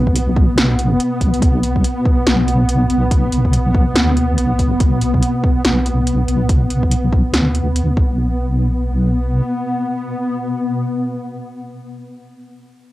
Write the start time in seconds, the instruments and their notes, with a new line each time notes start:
Already playing: wobble bass B1, ambient pad B3
0.07 kick
0.16 closed hi-hat
0.36 kick
0.57 wobble bass B1, snare, closed hi-hat
0.79 closed hi-hat
1.00 closed hi-hat
1.21 wobble bass B1, kick, closed hi-hat
1.34 closed hi-hat
1.42 wobble bass B1, kick, closed hi-hat
1.63 closed hi-hat
1.76 kick
1.84 closed hi-hat
2.05 kick
2.26 wobble bass B1, snare, closed hi-hat
2.48 closed hi-hat
2.69 closed hi-hat
2.90 wobble bass B1, closed hi-hat
3.11 kick, closed hi-hat
3.32 wobble bass B1, closed hi-hat
3.45 kick
3.53 closed hi-hat
3.75 kick
3.96 wobble bass D2, snare, closed hi-hat
4.17 closed hi-hat
4.38 wobble bass B1, closed hi-hat
4.59 kick, closed hi-hat
4.80 wobble bass B1, kick, closed hi-hat
5.01 closed hi-hat
5.14 kick
5.23 closed hi-hat
5.44 kick
5.65 wobble bass B1, snare, closed hi-hat
5.86 closed hi-hat
6.07 closed hi-hat
6.28 wobble bass B1, closed hi-hat
6.49 kick, closed hi-hat
6.70 wobble bass B1, closed hi-hat
6.83 kick
6.91 closed hi-hat
7.13 kick
7.34 wobble bass D2, snare, closed hi-hat
7.55 closed hi-hat
7.76 closed hi-hat
7.97 wobble bass B1, ambient pad B3, kick